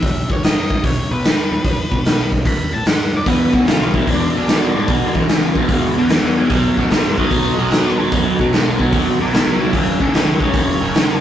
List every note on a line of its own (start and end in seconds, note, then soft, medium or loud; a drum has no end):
0.00 0.28 B1 loud
0.00 0.30 E5 medium
0.00 kick loud
0.00 open hi-hat medium
0.30 0.55 A1 medium
0.30 0.44 C#5 medium
0.30 kick medium
0.43 0.83 D#5 medium
0.43 snare loud
0.43 open hi-hat medium
0.57 0.76 F#2 medium
0.70 kick medium
0.84 1.09 B1 medium
0.84 1.11 C#5 medium
0.84 kick loud
0.84 open hi-hat medium
1.11 1.23 B1 loud
1.11 2.29 B4 loud
1.24 snare loud
1.24 open hi-hat medium
1.51 1.64 D#2 medium
1.64 1.77 F#2 loud
1.64 kick loud
1.64 open hi-hat medium
1.92 2.17 B2 medium
1.92 kick medium
2.05 snare medium
2.05 open hi-hat medium
2.19 2.44 B1 medium
2.32 kick medium
2.45 2.71 D#2 loud
2.45 2.73 B5 loud
2.45 kick loud
2.45 open hi-hat medium
2.73 2.85 A2 medium
2.73 2.86 A5 loud
2.86 3.11 G#2 medium
2.86 3.14 F#5 medium
2.86 snare loud
2.86 open hi-hat medium
3.13 3.26 F#2 medium
3.13 3.28 D5 medium
3.26 3.52 E2 loud
3.26 3.51 E2 medium
3.26 3.52 B2 medium
3.26 3.54 B4 loud
3.26 kick loud
3.26 open hi-hat medium
3.53 3.79 D2 medium
3.53 3.66 E2 medium
3.53 3.67 B2 medium
3.53 3.67 F#4 medium
3.53 kick medium
3.67 3.92 E2 medium
3.67 3.92 C#3 medium
3.67 3.94 F4 medium
3.67 snare loud
3.67 open hi-hat medium
3.81 4.00 B1 medium
3.94 4.07 E2 medium
3.94 4.07 B2 medium
3.94 4.08 E4 medium
3.94 kick medium
4.07 4.33 E2 medium
4.07 4.33 B2 medium
4.07 4.36 D4 medium
4.07 kick loud
4.07 open hi-hat medium
4.35 4.48 E2 medium
4.35 4.47 E2 medium
4.35 4.48 B2 medium
4.35 5.15 D4 medium
4.48 4.73 E2 medium
4.48 4.73 B2 medium
4.48 snare loud
4.48 open hi-hat soft
4.75 4.88 E2 medium
4.75 4.88 G#2 medium
4.75 4.88 B2 medium
4.88 5.01 B1 loud
4.88 5.14 E2 medium
4.88 5.14 B2 medium
4.88 kick loud
4.88 open hi-hat medium
5.15 5.28 E2 medium
5.15 5.28 B2 medium
5.15 5.40 E3 medium
5.15 kick medium
5.28 5.54 E2 medium
5.28 5.54 C#3 medium
5.28 snare loud
5.28 open hi-hat soft
5.43 5.68 E2 medium
5.56 5.68 E2 medium
5.56 5.69 B2 medium
5.56 kick medium
5.69 5.95 E2 medium
5.69 5.94 G#2 loud
5.69 5.95 B2 medium
5.69 kick loud
5.69 open hi-hat medium
5.97 6.09 E2 medium
5.97 6.09 B2 medium
5.97 6.10 E5 medium
5.97 6.11 G#5 medium
6.03 6.22 E2 medium
6.09 6.35 E2 medium
6.09 6.35 B2 medium
6.09 6.36 E5 medium
6.09 6.38 G#5 medium
6.09 snare loud
6.09 open hi-hat medium
6.23 6.48 E2 medium
6.37 6.49 E2 medium
6.37 6.49 B2 medium
6.37 6.50 E5 medium
6.37 6.51 G#5 medium
6.50 6.75 B1 loud
6.50 6.75 B2 medium
6.50 6.75 F#3 medium
6.50 9.70 C#4 medium
6.50 9.71 D#4 medium
6.50 9.70 F#4 medium
6.50 9.70 A4 medium
6.50 6.76 D#5 medium
6.50 6.78 F#5 loud
6.50 kick loud
6.50 open hi-hat medium
6.77 7.02 A1 medium
6.77 6.89 B2 medium
6.77 6.90 F#3 medium
6.77 6.91 D#5 medium
6.77 6.91 F#5 medium
6.77 kick medium
6.91 7.15 B2 medium
6.91 7.16 G#3 medium
6.91 7.17 D#5 medium
6.91 7.18 F#5 medium
6.91 snare loud
6.91 open hi-hat medium
7.05 7.23 F#2 medium
7.18 7.30 B2 medium
7.18 7.30 F#3 medium
7.18 7.98 D#5 loud
7.18 kick medium
7.31 7.56 B1 medium
7.31 7.56 B2 medium
7.31 7.56 F#3 medium
7.31 kick loud
7.31 open hi-hat medium
7.58 7.71 B1 loud
7.58 7.71 B2 medium
7.58 7.71 F#3 medium
7.71 7.96 B2 medium
7.71 7.97 F#3 medium
7.71 snare loud
7.71 open hi-hat medium
7.99 8.12 D#2 medium
7.99 8.11 B2 medium
7.99 8.12 F#3 medium
8.12 8.25 F#2 loud
8.12 8.37 B2 medium
8.12 8.37 F#3 medium
8.12 kick loud
8.12 open hi-hat soft
8.39 8.64 B2 medium
8.39 8.51 B2 medium
8.39 8.52 F#3 medium
8.39 kick medium
8.52 8.77 B2 medium
8.52 8.77 G#3 medium
8.52 snare loud
8.52 open hi-hat soft
8.67 8.91 B1 medium
8.79 8.92 B2 medium
8.79 8.92 F#3 medium
8.79 kick medium
8.93 9.18 D#2 loud
8.93 9.18 B2 medium
8.93 9.18 F#3 medium
8.93 kick loud
8.93 open hi-hat medium
9.20 9.32 B2 medium
9.20 9.33 F#3 medium
9.20 9.33 B4 medium
9.20 9.34 G#5 medium
9.26 9.45 B1 medium
9.33 9.58 B2 medium
9.33 9.58 F#3 medium
9.33 9.59 B4 medium
9.33 9.61 G#5 loud
9.33 snare loud
9.33 open hi-hat medium
9.46 9.71 C#2 medium
9.60 9.72 B2 medium
9.60 9.72 F#3 medium
9.60 9.74 B4 medium
9.60 9.74 G#5 medium
9.73 9.98 F#1 medium
9.73 9.98 F#2 medium
9.73 9.98 C#3 medium
9.73 11.21 C#4 medium
9.73 11.21 E4 medium
9.73 11.21 G#4 medium
9.73 11.21 A#4 medium
9.73 10.00 D5 medium
9.73 10.01 F#5 medium
9.73 kick loud
9.73 open hi-hat medium
10.00 10.25 E1 medium
10.00 10.12 F#2 medium
10.00 10.13 C#3 medium
10.00 10.14 D5 medium
10.00 kick medium
10.04 10.15 F#5 medium
10.14 10.38 F#2 medium
10.14 10.39 D#3 medium
10.14 10.40 D5 medium
10.14 10.42 F#5 medium
10.14 snare loud
10.14 open hi-hat medium
10.27 10.46 C#2 medium
10.40 10.53 F#2 medium
10.40 10.53 C#3 medium
10.40 11.20 C#5 loud
10.40 kick medium
10.54 10.79 F#1 medium
10.54 10.79 F#2 medium
10.54 10.79 C#3 medium
10.54 kick loud
10.54 open hi-hat medium
10.80 10.93 F#1 medium
10.80 10.93 F#2 medium
10.80 10.94 C#3 medium
10.94 11.19 F#2 medium
10.94 11.19 C#3 loud
10.94 snare loud
10.94 open hi-hat medium